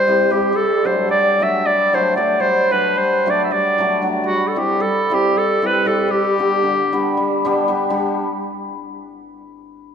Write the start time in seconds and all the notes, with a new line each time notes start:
Already playing: C5
0.07 G3 C4 E4 G4
0.30 G3 C4 E4 G4
0.52 G3 A4
0.84 F#3 A3 D4 F#4 C5
1.09 G3 D5
1.40 F#3 A3 D4 F#4 E5
1.65 G3 D5
1.93 F#3 A3 D4 F#4 C5
2.16 F#3 A3 D4 F#4 D5
2.40 G3 C5
2.71 F#3 A3 D4 F#4 B4
2.95 G3 C5
3.26 F#3 A3 D4 F#4 D5
3.44 E5
3.51 G3 D5
3.78 F#3 A3 D4 F#4
4.02 F#3 A3 D4 F#4
4.24 G3 F#4
4.48 A4
4.55 G3 C4 E4 G4
4.80 G3 A4
5.10 G3 C4 E4 G4
5.35 G3 A4
5.62 G3 C4 E4 G4
5.66 B4
5.85 G3 C4 E4 G4 A4
6.08 G3 G4
6.38 G3 B3 D4 G4
6.63 D3
6.92 G3 B3 D4 G4
7.17 G3
7.45 G3 B3 D4 G4
7.68 G3 B3 D4 G4
7.90 G3 B3 D4 G4